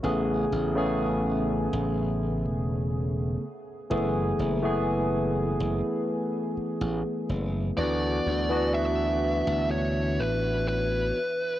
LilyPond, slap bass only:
\new Staff \with { instrumentName = "Slap bass" } { \clef bass \time 4/4 \key d \lydian \tempo 4 = 62 a,,8 a,,4~ a,,16 a,,8. e,,4 r8 | fis,,8 fis,,4~ fis,,16 fis,,16 r4 a,,16 r16 fis,,8 | d,8 d,4~ d,16 d,8. a,,4 r8 | }